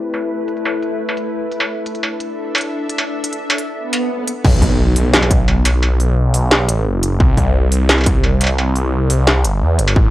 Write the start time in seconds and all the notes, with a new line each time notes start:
Already playing: A3 E4 B4
0.14 closed hi-hat, struck metal
0.48 closed hi-hat
0.57 closed hi-hat
0.65 struck metal
0.82 closed hi-hat
1.09 struck metal
1.17 closed hi-hat
1.51 closed hi-hat
1.60 struck metal
1.68 D4 A4 E5
1.86 closed hi-hat
1.95 closed hi-hat
2.03 struck metal
2.20 closed hi-hat
2.55 closed hi-hat, struck metal
2.58 closed hi-hat
2.61 closed hi-hat
2.89 closed hi-hat
2.98 struck metal
3.24 closed hi-hat
3.33 closed hi-hat
3.50 struck metal
3.58 closed hi-hat
3.75 swell
3.93 closed hi-hat, struck metal
4.27 closed hi-hat
4.44 B1, kick, crash, impact
4.62 kick, open hi-hat
4.96 B1, open hi-hat
5.14 snare, open hi-hat
5.23 struck metal
5.31 kick, closed hi-hat
5.48 struck metal
5.65 closed hi-hat, struck metal
5.83 struck metal
6.00 open hi-hat
6.34 B1, open hi-hat
6.51 snare
6.69 A1, closed hi-hat
6.86 F#1
7.03 closed hi-hat
7.20 C2, kick
7.37 kick, open hi-hat
7.72 C2, open hi-hat
7.89 snare, open hi-hat
7.98 struck metal
8.01 struck metal
8.04 kick, closed hi-hat, struck metal
8.24 struck metal
8.41 closed hi-hat, struck metal
8.44 struck metal
8.47 struck metal
8.58 struck metal
8.76 open hi-hat
9.10 C2, open hi-hat
9.27 snare
9.44 G1, closed hi-hat
9.62 E2
9.79 G1, closed hi-hat
9.88 struck metal
9.96 A1, kick